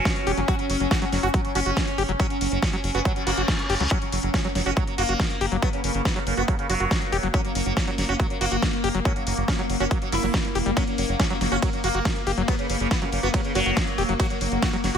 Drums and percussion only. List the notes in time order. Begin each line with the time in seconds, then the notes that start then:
0.05 kick, snare, closed hi-hat
0.16 closed hi-hat
0.27 open hi-hat
0.37 closed hi-hat
0.48 kick, closed hi-hat
0.59 closed hi-hat
0.70 open hi-hat
0.80 closed hi-hat
0.91 kick, snare, closed hi-hat
1.02 closed hi-hat
1.12 snare, open hi-hat
1.23 closed hi-hat
1.34 kick, closed hi-hat
1.45 closed hi-hat
1.55 open hi-hat
1.66 closed hi-hat
1.77 kick, snare, closed hi-hat
1.87 closed hi-hat
1.98 open hi-hat
2.09 closed hi-hat
2.20 kick, closed hi-hat
2.30 closed hi-hat
2.41 open hi-hat
2.52 closed hi-hat
2.62 kick, snare, closed hi-hat
2.73 closed hi-hat
2.84 open hi-hat
2.95 closed hi-hat
3.05 kick, closed hi-hat
3.16 closed hi-hat
3.27 open hi-hat
3.37 closed hi-hat
3.48 kick, snare, closed hi-hat
3.59 closed hi-hat
3.70 open hi-hat
3.80 closed hi-hat
3.91 kick, closed hi-hat
4.02 closed hi-hat
4.12 open hi-hat
4.23 closed hi-hat
4.34 kick, snare, closed hi-hat
4.45 closed hi-hat
4.55 snare, open hi-hat
4.66 closed hi-hat
4.77 kick, closed hi-hat
4.87 closed hi-hat
4.98 open hi-hat
5.09 closed hi-hat
5.20 kick, snare, closed hi-hat
5.30 closed hi-hat
5.41 open hi-hat
5.52 closed hi-hat
5.62 kick, closed hi-hat
5.73 closed hi-hat
5.84 open hi-hat
5.95 closed hi-hat
6.05 kick, snare, closed hi-hat
6.16 closed hi-hat
6.27 open hi-hat
6.37 closed hi-hat
6.48 kick, closed hi-hat
6.59 closed hi-hat
6.70 open hi-hat
6.80 closed hi-hat
6.91 kick, snare, closed hi-hat
7.02 closed hi-hat
7.12 open hi-hat
7.23 closed hi-hat
7.34 kick, closed hi-hat
7.45 closed hi-hat
7.55 open hi-hat
7.66 closed hi-hat
7.77 kick, snare, closed hi-hat
7.87 closed hi-hat
7.98 snare, open hi-hat
8.09 closed hi-hat
8.20 kick, closed hi-hat
8.30 closed hi-hat
8.41 open hi-hat
8.52 closed hi-hat
8.62 kick, snare, closed hi-hat
8.73 closed hi-hat
8.84 open hi-hat
8.95 closed hi-hat
9.05 kick, closed hi-hat
9.16 closed hi-hat
9.27 open hi-hat
9.37 closed hi-hat
9.48 kick, snare, closed hi-hat
9.59 closed hi-hat
9.70 open hi-hat
9.80 closed hi-hat
9.91 kick, closed hi-hat
10.02 closed hi-hat
10.12 open hi-hat
10.23 closed hi-hat
10.34 kick, snare, closed hi-hat
10.45 closed hi-hat
10.55 open hi-hat
10.66 closed hi-hat
10.77 kick, closed hi-hat, ride
10.87 closed hi-hat
10.98 open hi-hat
11.09 closed hi-hat
11.20 kick, snare, closed hi-hat, ride
11.30 closed hi-hat
11.41 snare, open hi-hat
11.52 closed hi-hat
11.62 kick, closed hi-hat, ride
11.73 closed hi-hat
11.84 open hi-hat
11.95 closed hi-hat
12.05 kick, snare, closed hi-hat, ride
12.16 closed hi-hat
12.27 open hi-hat
12.37 closed hi-hat
12.48 kick, closed hi-hat, ride
12.59 closed hi-hat
12.70 open hi-hat
12.80 closed hi-hat
12.91 kick, snare, closed hi-hat, ride
13.02 closed hi-hat
13.12 open hi-hat
13.23 closed hi-hat
13.34 kick, closed hi-hat, ride
13.45 closed hi-hat
13.55 open hi-hat
13.66 closed hi-hat
13.77 kick, snare, closed hi-hat, ride
13.87 closed hi-hat
13.98 open hi-hat
14.09 closed hi-hat
14.20 kick, closed hi-hat, ride
14.30 closed hi-hat
14.41 open hi-hat
14.52 closed hi-hat
14.62 kick, snare, closed hi-hat, ride
14.73 closed hi-hat
14.84 snare, open hi-hat
14.95 closed hi-hat